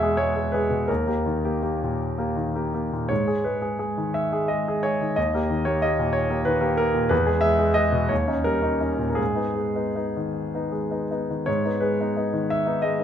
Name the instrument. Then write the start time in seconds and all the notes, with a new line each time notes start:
grand piano
Already playing: B2 G#3 G#4 B4 C#5 E5
0.03 G#3 G#4
0.17 G#3 C#5
0.36 G#3 G#4
0.52 G#3 G#4 B4
0.70 B2
0.88 D#2 A#4
1.07 A#3 G4
1.26 D#3
1.45 A#3 G4
1.63 A#3 G4
1.83 A#2
2.18 A#3 G4
2.36 D#3
2.55 A#3 G4
2.74 A#3 G4
2.92 A#2
3.09 G#2 C#5
3.27 G#3 G#4
3.44 G#3 B4
3.62 G#3 G#4
3.79 G#3 G#4
3.98 D#3
4.14 E5
4.32 G#3 G#4
4.48 G#3 D#5
4.68 G#3 G#4
4.83 G#3 G#4 C#5
5.01 D#3
5.16 D#2 D#5
5.34 A#3 G4
5.50 D#3
5.65 A#3 G4 C#5
5.82 A#3 G4 D#5
5.99 A#2
6.13 C#5
6.30 A#3 G4
6.45 D#3 B4
6.61 A#3 G4
6.77 A#3 G4 A#4
6.94 A#2
7.09 E2 B4
7.27 G#3 G#4
7.41 G#3 E5
7.59 G#3 G#4
7.74 G#3 G#4 D#5
7.92 B2
8.09 D#2 C#5
8.27 C#4 D#4
8.44 G3 A#4
8.62 C#4 D#4
8.80 C#4 D#4
8.99 A#2
9.10 A#4
9.15 G#2 G#4
9.35 B3 D#4
9.55 G#3
9.75 B3 D#4
9.95 B3 D#4
10.16 D#3
10.54 B3 D#4
10.72 G#3
10.90 B3 D#4
11.11 B3 D#4
11.31 D#3
11.46 G#2 C#5
11.65 B3 D#4
11.80 G#3 B4
12.00 B3 D#4
12.17 B3 D#4
12.33 D#3
12.50 E5
12.67 B3 D#4
12.82 G#3 D#5
12.99 B3 D#4